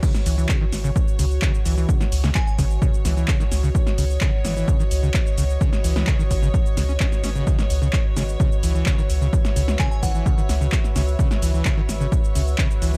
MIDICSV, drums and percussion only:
0, 0, Header, 1, 2, 480
1, 0, Start_track
1, 0, Key_signature, 4, "minor"
1, 0, Tempo, 465116
1, 29, Time_signature, 4, 2, 24, 8
1, 13385, End_track
2, 0, Start_track
2, 0, Title_t, "Drums"
2, 29, Note_on_c, 9, 36, 117
2, 29, Note_on_c, 9, 49, 105
2, 33, Note_on_c, 9, 82, 49
2, 132, Note_off_c, 9, 36, 0
2, 132, Note_off_c, 9, 49, 0
2, 136, Note_off_c, 9, 82, 0
2, 150, Note_on_c, 9, 38, 58
2, 154, Note_on_c, 9, 82, 33
2, 253, Note_off_c, 9, 38, 0
2, 257, Note_off_c, 9, 82, 0
2, 268, Note_on_c, 9, 46, 101
2, 272, Note_on_c, 9, 82, 83
2, 372, Note_off_c, 9, 46, 0
2, 376, Note_off_c, 9, 82, 0
2, 394, Note_on_c, 9, 82, 36
2, 497, Note_off_c, 9, 82, 0
2, 503, Note_on_c, 9, 39, 124
2, 508, Note_on_c, 9, 36, 117
2, 512, Note_on_c, 9, 82, 47
2, 606, Note_off_c, 9, 39, 0
2, 612, Note_off_c, 9, 36, 0
2, 616, Note_off_c, 9, 82, 0
2, 748, Note_on_c, 9, 38, 59
2, 748, Note_on_c, 9, 46, 90
2, 753, Note_on_c, 9, 82, 80
2, 852, Note_off_c, 9, 38, 0
2, 852, Note_off_c, 9, 46, 0
2, 856, Note_off_c, 9, 82, 0
2, 875, Note_on_c, 9, 82, 38
2, 978, Note_off_c, 9, 82, 0
2, 988, Note_on_c, 9, 36, 124
2, 993, Note_on_c, 9, 82, 49
2, 1092, Note_off_c, 9, 36, 0
2, 1096, Note_off_c, 9, 82, 0
2, 1114, Note_on_c, 9, 82, 34
2, 1217, Note_off_c, 9, 82, 0
2, 1228, Note_on_c, 9, 46, 108
2, 1232, Note_on_c, 9, 82, 80
2, 1331, Note_off_c, 9, 46, 0
2, 1336, Note_off_c, 9, 82, 0
2, 1355, Note_on_c, 9, 82, 35
2, 1458, Note_off_c, 9, 82, 0
2, 1464, Note_on_c, 9, 39, 127
2, 1468, Note_on_c, 9, 36, 118
2, 1473, Note_on_c, 9, 82, 47
2, 1567, Note_off_c, 9, 39, 0
2, 1571, Note_off_c, 9, 36, 0
2, 1577, Note_off_c, 9, 82, 0
2, 1594, Note_on_c, 9, 82, 34
2, 1698, Note_off_c, 9, 82, 0
2, 1708, Note_on_c, 9, 46, 99
2, 1712, Note_on_c, 9, 82, 85
2, 1811, Note_off_c, 9, 46, 0
2, 1815, Note_off_c, 9, 82, 0
2, 1834, Note_on_c, 9, 82, 36
2, 1937, Note_off_c, 9, 82, 0
2, 1948, Note_on_c, 9, 36, 123
2, 1953, Note_on_c, 9, 82, 48
2, 2051, Note_off_c, 9, 36, 0
2, 2056, Note_off_c, 9, 82, 0
2, 2070, Note_on_c, 9, 38, 60
2, 2074, Note_on_c, 9, 82, 33
2, 2173, Note_off_c, 9, 38, 0
2, 2177, Note_off_c, 9, 82, 0
2, 2189, Note_on_c, 9, 46, 111
2, 2193, Note_on_c, 9, 82, 83
2, 2292, Note_off_c, 9, 46, 0
2, 2296, Note_off_c, 9, 82, 0
2, 2310, Note_on_c, 9, 38, 80
2, 2314, Note_on_c, 9, 82, 36
2, 2413, Note_off_c, 9, 38, 0
2, 2417, Note_off_c, 9, 82, 0
2, 2424, Note_on_c, 9, 39, 126
2, 2428, Note_on_c, 9, 36, 126
2, 2433, Note_on_c, 9, 82, 46
2, 2527, Note_off_c, 9, 39, 0
2, 2531, Note_off_c, 9, 36, 0
2, 2536, Note_off_c, 9, 82, 0
2, 2554, Note_on_c, 9, 82, 33
2, 2657, Note_off_c, 9, 82, 0
2, 2668, Note_on_c, 9, 36, 65
2, 2669, Note_on_c, 9, 46, 95
2, 2673, Note_on_c, 9, 82, 81
2, 2771, Note_off_c, 9, 36, 0
2, 2772, Note_off_c, 9, 46, 0
2, 2776, Note_off_c, 9, 82, 0
2, 2794, Note_on_c, 9, 82, 36
2, 2897, Note_off_c, 9, 82, 0
2, 2908, Note_on_c, 9, 36, 127
2, 2912, Note_on_c, 9, 82, 48
2, 3012, Note_off_c, 9, 36, 0
2, 3016, Note_off_c, 9, 82, 0
2, 3033, Note_on_c, 9, 82, 32
2, 3136, Note_off_c, 9, 82, 0
2, 3148, Note_on_c, 9, 38, 60
2, 3148, Note_on_c, 9, 46, 112
2, 3152, Note_on_c, 9, 82, 83
2, 3251, Note_off_c, 9, 38, 0
2, 3251, Note_off_c, 9, 46, 0
2, 3255, Note_off_c, 9, 82, 0
2, 3274, Note_on_c, 9, 82, 35
2, 3377, Note_off_c, 9, 82, 0
2, 3383, Note_on_c, 9, 39, 127
2, 3388, Note_on_c, 9, 36, 126
2, 3393, Note_on_c, 9, 82, 47
2, 3487, Note_off_c, 9, 39, 0
2, 3492, Note_off_c, 9, 36, 0
2, 3496, Note_off_c, 9, 82, 0
2, 3510, Note_on_c, 9, 38, 37
2, 3514, Note_on_c, 9, 82, 34
2, 3613, Note_off_c, 9, 38, 0
2, 3617, Note_off_c, 9, 82, 0
2, 3629, Note_on_c, 9, 38, 59
2, 3629, Note_on_c, 9, 46, 100
2, 3633, Note_on_c, 9, 82, 83
2, 3732, Note_off_c, 9, 38, 0
2, 3732, Note_off_c, 9, 46, 0
2, 3736, Note_off_c, 9, 82, 0
2, 3754, Note_on_c, 9, 82, 34
2, 3857, Note_off_c, 9, 82, 0
2, 3868, Note_on_c, 9, 36, 127
2, 3873, Note_on_c, 9, 82, 44
2, 3972, Note_off_c, 9, 36, 0
2, 3976, Note_off_c, 9, 82, 0
2, 3990, Note_on_c, 9, 38, 62
2, 3994, Note_on_c, 9, 82, 30
2, 4094, Note_off_c, 9, 38, 0
2, 4098, Note_off_c, 9, 82, 0
2, 4108, Note_on_c, 9, 46, 107
2, 4112, Note_on_c, 9, 82, 76
2, 4211, Note_off_c, 9, 46, 0
2, 4216, Note_off_c, 9, 82, 0
2, 4235, Note_on_c, 9, 82, 34
2, 4338, Note_off_c, 9, 82, 0
2, 4343, Note_on_c, 9, 39, 120
2, 4349, Note_on_c, 9, 36, 123
2, 4353, Note_on_c, 9, 82, 45
2, 4446, Note_off_c, 9, 39, 0
2, 4452, Note_off_c, 9, 36, 0
2, 4456, Note_off_c, 9, 82, 0
2, 4589, Note_on_c, 9, 38, 61
2, 4589, Note_on_c, 9, 46, 101
2, 4593, Note_on_c, 9, 82, 75
2, 4692, Note_off_c, 9, 38, 0
2, 4692, Note_off_c, 9, 46, 0
2, 4696, Note_off_c, 9, 82, 0
2, 4714, Note_on_c, 9, 82, 35
2, 4818, Note_off_c, 9, 82, 0
2, 4829, Note_on_c, 9, 36, 127
2, 4833, Note_on_c, 9, 82, 45
2, 4932, Note_off_c, 9, 36, 0
2, 4936, Note_off_c, 9, 82, 0
2, 4954, Note_on_c, 9, 82, 33
2, 5058, Note_off_c, 9, 82, 0
2, 5068, Note_on_c, 9, 46, 107
2, 5072, Note_on_c, 9, 82, 75
2, 5171, Note_off_c, 9, 46, 0
2, 5176, Note_off_c, 9, 82, 0
2, 5194, Note_on_c, 9, 82, 33
2, 5297, Note_off_c, 9, 82, 0
2, 5303, Note_on_c, 9, 39, 125
2, 5309, Note_on_c, 9, 36, 126
2, 5313, Note_on_c, 9, 82, 44
2, 5406, Note_off_c, 9, 39, 0
2, 5412, Note_off_c, 9, 36, 0
2, 5416, Note_off_c, 9, 82, 0
2, 5434, Note_on_c, 9, 82, 32
2, 5537, Note_off_c, 9, 82, 0
2, 5548, Note_on_c, 9, 46, 99
2, 5552, Note_on_c, 9, 82, 80
2, 5652, Note_off_c, 9, 46, 0
2, 5656, Note_off_c, 9, 82, 0
2, 5674, Note_on_c, 9, 82, 32
2, 5777, Note_off_c, 9, 82, 0
2, 5789, Note_on_c, 9, 36, 125
2, 5793, Note_on_c, 9, 82, 44
2, 5892, Note_off_c, 9, 36, 0
2, 5896, Note_off_c, 9, 82, 0
2, 5910, Note_on_c, 9, 38, 62
2, 5914, Note_on_c, 9, 82, 30
2, 6013, Note_off_c, 9, 38, 0
2, 6017, Note_off_c, 9, 82, 0
2, 6029, Note_on_c, 9, 46, 109
2, 6033, Note_on_c, 9, 82, 75
2, 6132, Note_off_c, 9, 46, 0
2, 6136, Note_off_c, 9, 82, 0
2, 6151, Note_on_c, 9, 38, 88
2, 6155, Note_on_c, 9, 82, 33
2, 6254, Note_off_c, 9, 38, 0
2, 6258, Note_off_c, 9, 82, 0
2, 6264, Note_on_c, 9, 39, 118
2, 6269, Note_on_c, 9, 36, 123
2, 6273, Note_on_c, 9, 82, 43
2, 6367, Note_off_c, 9, 39, 0
2, 6372, Note_off_c, 9, 36, 0
2, 6376, Note_off_c, 9, 82, 0
2, 6395, Note_on_c, 9, 82, 31
2, 6498, Note_off_c, 9, 82, 0
2, 6509, Note_on_c, 9, 36, 67
2, 6509, Note_on_c, 9, 46, 96
2, 6513, Note_on_c, 9, 82, 73
2, 6612, Note_off_c, 9, 36, 0
2, 6612, Note_off_c, 9, 46, 0
2, 6616, Note_off_c, 9, 82, 0
2, 6634, Note_on_c, 9, 82, 35
2, 6738, Note_off_c, 9, 82, 0
2, 6749, Note_on_c, 9, 36, 127
2, 6753, Note_on_c, 9, 82, 45
2, 6852, Note_off_c, 9, 36, 0
2, 6856, Note_off_c, 9, 82, 0
2, 6875, Note_on_c, 9, 82, 31
2, 6978, Note_off_c, 9, 82, 0
2, 6989, Note_on_c, 9, 38, 63
2, 6989, Note_on_c, 9, 46, 111
2, 6993, Note_on_c, 9, 82, 79
2, 7092, Note_off_c, 9, 38, 0
2, 7092, Note_off_c, 9, 46, 0
2, 7096, Note_off_c, 9, 82, 0
2, 7114, Note_on_c, 9, 82, 34
2, 7217, Note_off_c, 9, 82, 0
2, 7223, Note_on_c, 9, 39, 120
2, 7229, Note_on_c, 9, 36, 123
2, 7232, Note_on_c, 9, 82, 44
2, 7326, Note_off_c, 9, 39, 0
2, 7332, Note_off_c, 9, 36, 0
2, 7336, Note_off_c, 9, 82, 0
2, 7349, Note_on_c, 9, 38, 38
2, 7353, Note_on_c, 9, 82, 32
2, 7452, Note_off_c, 9, 38, 0
2, 7456, Note_off_c, 9, 82, 0
2, 7468, Note_on_c, 9, 38, 65
2, 7468, Note_on_c, 9, 46, 101
2, 7472, Note_on_c, 9, 82, 79
2, 7571, Note_off_c, 9, 38, 0
2, 7571, Note_off_c, 9, 46, 0
2, 7575, Note_off_c, 9, 82, 0
2, 7593, Note_on_c, 9, 82, 33
2, 7697, Note_off_c, 9, 82, 0
2, 7708, Note_on_c, 9, 36, 122
2, 7712, Note_on_c, 9, 82, 46
2, 7811, Note_off_c, 9, 36, 0
2, 7815, Note_off_c, 9, 82, 0
2, 7829, Note_on_c, 9, 38, 66
2, 7833, Note_on_c, 9, 82, 30
2, 7932, Note_off_c, 9, 38, 0
2, 7936, Note_off_c, 9, 82, 0
2, 7947, Note_on_c, 9, 46, 104
2, 7951, Note_on_c, 9, 82, 76
2, 8051, Note_off_c, 9, 46, 0
2, 8055, Note_off_c, 9, 82, 0
2, 8073, Note_on_c, 9, 82, 33
2, 8176, Note_off_c, 9, 82, 0
2, 8182, Note_on_c, 9, 39, 116
2, 8188, Note_on_c, 9, 36, 124
2, 8192, Note_on_c, 9, 82, 43
2, 8285, Note_off_c, 9, 39, 0
2, 8291, Note_off_c, 9, 36, 0
2, 8295, Note_off_c, 9, 82, 0
2, 8427, Note_on_c, 9, 38, 64
2, 8427, Note_on_c, 9, 46, 89
2, 8431, Note_on_c, 9, 82, 74
2, 8530, Note_off_c, 9, 38, 0
2, 8530, Note_off_c, 9, 46, 0
2, 8534, Note_off_c, 9, 82, 0
2, 8552, Note_on_c, 9, 82, 36
2, 8656, Note_off_c, 9, 82, 0
2, 8668, Note_on_c, 9, 36, 125
2, 8671, Note_on_c, 9, 82, 46
2, 8771, Note_off_c, 9, 36, 0
2, 8774, Note_off_c, 9, 82, 0
2, 8793, Note_on_c, 9, 82, 31
2, 8896, Note_off_c, 9, 82, 0
2, 8907, Note_on_c, 9, 46, 107
2, 8912, Note_on_c, 9, 82, 77
2, 9011, Note_off_c, 9, 46, 0
2, 9015, Note_off_c, 9, 82, 0
2, 9033, Note_on_c, 9, 82, 33
2, 9136, Note_off_c, 9, 82, 0
2, 9142, Note_on_c, 9, 39, 119
2, 9148, Note_on_c, 9, 36, 121
2, 9152, Note_on_c, 9, 82, 46
2, 9245, Note_off_c, 9, 39, 0
2, 9251, Note_off_c, 9, 36, 0
2, 9255, Note_off_c, 9, 82, 0
2, 9273, Note_on_c, 9, 82, 33
2, 9376, Note_off_c, 9, 82, 0
2, 9387, Note_on_c, 9, 46, 95
2, 9392, Note_on_c, 9, 82, 77
2, 9491, Note_off_c, 9, 46, 0
2, 9495, Note_off_c, 9, 82, 0
2, 9514, Note_on_c, 9, 82, 33
2, 9617, Note_off_c, 9, 82, 0
2, 9628, Note_on_c, 9, 36, 120
2, 9632, Note_on_c, 9, 82, 46
2, 9731, Note_off_c, 9, 36, 0
2, 9736, Note_off_c, 9, 82, 0
2, 9750, Note_on_c, 9, 38, 66
2, 9754, Note_on_c, 9, 82, 31
2, 9853, Note_off_c, 9, 38, 0
2, 9857, Note_off_c, 9, 82, 0
2, 9869, Note_on_c, 9, 46, 104
2, 9873, Note_on_c, 9, 82, 78
2, 9972, Note_off_c, 9, 46, 0
2, 9976, Note_off_c, 9, 82, 0
2, 9990, Note_on_c, 9, 38, 91
2, 9995, Note_on_c, 9, 82, 35
2, 10094, Note_off_c, 9, 38, 0
2, 10098, Note_off_c, 9, 82, 0
2, 10103, Note_on_c, 9, 39, 116
2, 10108, Note_on_c, 9, 36, 109
2, 10113, Note_on_c, 9, 82, 46
2, 10207, Note_off_c, 9, 39, 0
2, 10212, Note_off_c, 9, 36, 0
2, 10216, Note_off_c, 9, 82, 0
2, 10234, Note_on_c, 9, 82, 32
2, 10337, Note_off_c, 9, 82, 0
2, 10348, Note_on_c, 9, 36, 61
2, 10348, Note_on_c, 9, 46, 89
2, 10353, Note_on_c, 9, 82, 76
2, 10451, Note_off_c, 9, 36, 0
2, 10452, Note_off_c, 9, 46, 0
2, 10456, Note_off_c, 9, 82, 0
2, 10475, Note_on_c, 9, 82, 36
2, 10578, Note_off_c, 9, 82, 0
2, 10588, Note_on_c, 9, 36, 117
2, 10593, Note_on_c, 9, 82, 48
2, 10692, Note_off_c, 9, 36, 0
2, 10696, Note_off_c, 9, 82, 0
2, 10714, Note_on_c, 9, 82, 33
2, 10817, Note_off_c, 9, 82, 0
2, 10828, Note_on_c, 9, 38, 66
2, 10828, Note_on_c, 9, 46, 103
2, 10832, Note_on_c, 9, 82, 80
2, 10931, Note_off_c, 9, 38, 0
2, 10931, Note_off_c, 9, 46, 0
2, 10935, Note_off_c, 9, 82, 0
2, 10954, Note_on_c, 9, 82, 34
2, 11057, Note_off_c, 9, 82, 0
2, 11064, Note_on_c, 9, 39, 117
2, 11069, Note_on_c, 9, 36, 114
2, 11073, Note_on_c, 9, 82, 44
2, 11167, Note_off_c, 9, 39, 0
2, 11172, Note_off_c, 9, 36, 0
2, 11176, Note_off_c, 9, 82, 0
2, 11190, Note_on_c, 9, 38, 40
2, 11195, Note_on_c, 9, 82, 33
2, 11294, Note_off_c, 9, 38, 0
2, 11298, Note_off_c, 9, 82, 0
2, 11309, Note_on_c, 9, 38, 67
2, 11309, Note_on_c, 9, 46, 94
2, 11313, Note_on_c, 9, 82, 82
2, 11412, Note_off_c, 9, 38, 0
2, 11412, Note_off_c, 9, 46, 0
2, 11416, Note_off_c, 9, 82, 0
2, 11434, Note_on_c, 9, 82, 33
2, 11538, Note_off_c, 9, 82, 0
2, 11549, Note_on_c, 9, 36, 116
2, 11553, Note_on_c, 9, 82, 47
2, 11652, Note_off_c, 9, 36, 0
2, 11656, Note_off_c, 9, 82, 0
2, 11671, Note_on_c, 9, 38, 67
2, 11675, Note_on_c, 9, 82, 34
2, 11774, Note_off_c, 9, 38, 0
2, 11778, Note_off_c, 9, 82, 0
2, 11789, Note_on_c, 9, 46, 102
2, 11793, Note_on_c, 9, 82, 78
2, 11892, Note_off_c, 9, 46, 0
2, 11896, Note_off_c, 9, 82, 0
2, 11915, Note_on_c, 9, 82, 36
2, 12018, Note_off_c, 9, 82, 0
2, 12025, Note_on_c, 9, 39, 115
2, 12028, Note_on_c, 9, 36, 111
2, 12034, Note_on_c, 9, 82, 48
2, 12128, Note_off_c, 9, 39, 0
2, 12132, Note_off_c, 9, 36, 0
2, 12137, Note_off_c, 9, 82, 0
2, 12270, Note_on_c, 9, 38, 60
2, 12270, Note_on_c, 9, 46, 88
2, 12274, Note_on_c, 9, 82, 76
2, 12373, Note_off_c, 9, 38, 0
2, 12373, Note_off_c, 9, 46, 0
2, 12377, Note_off_c, 9, 82, 0
2, 12395, Note_on_c, 9, 82, 37
2, 12498, Note_off_c, 9, 82, 0
2, 12508, Note_on_c, 9, 36, 124
2, 12514, Note_on_c, 9, 82, 48
2, 12612, Note_off_c, 9, 36, 0
2, 12617, Note_off_c, 9, 82, 0
2, 12635, Note_on_c, 9, 82, 33
2, 12738, Note_off_c, 9, 82, 0
2, 12749, Note_on_c, 9, 46, 100
2, 12753, Note_on_c, 9, 82, 80
2, 12852, Note_off_c, 9, 46, 0
2, 12857, Note_off_c, 9, 82, 0
2, 12875, Note_on_c, 9, 82, 35
2, 12978, Note_off_c, 9, 82, 0
2, 12984, Note_on_c, 9, 39, 127
2, 12989, Note_on_c, 9, 36, 113
2, 12993, Note_on_c, 9, 82, 47
2, 13087, Note_off_c, 9, 39, 0
2, 13092, Note_off_c, 9, 36, 0
2, 13096, Note_off_c, 9, 82, 0
2, 13115, Note_on_c, 9, 82, 34
2, 13218, Note_off_c, 9, 82, 0
2, 13230, Note_on_c, 9, 46, 91
2, 13234, Note_on_c, 9, 82, 80
2, 13333, Note_off_c, 9, 46, 0
2, 13337, Note_off_c, 9, 82, 0
2, 13385, End_track
0, 0, End_of_file